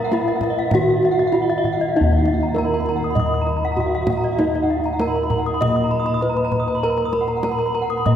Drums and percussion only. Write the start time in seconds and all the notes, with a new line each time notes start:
0.12 kendang high
0.41 kendang slap, kendang low
0.71 kendang high, kendang low
1.03 kendang slap
1.34 kendang slap
1.64 kendang slap, kendang low
1.80 kendang slap
2.11 kendang slap
2.26 kendang slap, kendang high
2.41 kendang slap
2.56 kendang slap, kendang high
2.86 kendang slap
3.16 kendang low
3.47 kendang slap
3.77 kendang slap, kendang low
4.07 kendang high, kendang low
4.24 kendang slap
4.39 kendang high
4.55 kendang slap
4.69 kendang slap
4.84 kendang slap
4.99 kendang slap, kendang high
5.30 kendang slap, kendang low
5.62 kendang high, kendang low
6.22 kendang slap
6.51 kendang low
6.68 kendang slap
6.97 kendang slap
7.13 kendang slap, kendang high
7.28 kendang slap
7.43 kendang slap, kendang high
7.75 kendang slap
8.06 kendang low